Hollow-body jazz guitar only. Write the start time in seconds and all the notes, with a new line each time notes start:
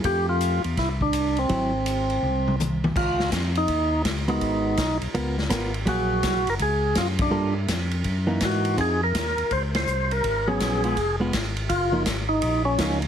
0.04 F3 A3 G4
1.49 F#3 C4 E4
4.28 G#3 B3 F#4 A#4
5.14 B3 F4 A#4
5.49 B3 F4 A#4
5.86 F#3 A#3 G#4
7.31 G3 A#3 F4 A4
8.27 E3 A#3 D#4
8.77 F3 C4 D#4 G#4
10.48 F#3 B3 C#4
10.84 G#3 B3 F4
11.20 G#3 B3 F4
11.92 F3 A#3 D#4
12.78 F3 A#3 D#4